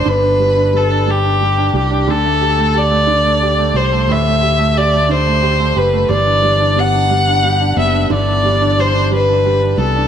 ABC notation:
X:1
M:6/8
L:1/16
Q:3/8=60
K:G
V:1 name="Violin"
B4 A2 G4 G2 | A4 d6 c2 | e4 d2 c4 B2 | d4 f6 e2 |
d4 c2 B4 A2 |]
V:2 name="Steel-string acoustic guitar"
z12 | z12 | z12 | E,2 D2 B,2 D2 G2 B,2 |
E,2 D4 D2 G2 B,2 |]
V:3 name="Upright piano"
[D,G,D] D G, D G, D G, D G, D G, D | D, A, G A, G A, D, A, G A, G A, | A,, A, G A, G A, D, A, G A, G A, | G, D G, D G, D G, D G, D G, D |
D, D G, D G, D G, D G, D G, D |]
V:4 name="Fingered electric bass" clef=bass
G,,,8- G,,,2 C,,2 | D,,8- D,,2 C,,2 | D,,8- D,,2 F,,,2 | G,,,8- G,,,2 F,,,2 |
G,,,8- G,,,2 C,,2 |]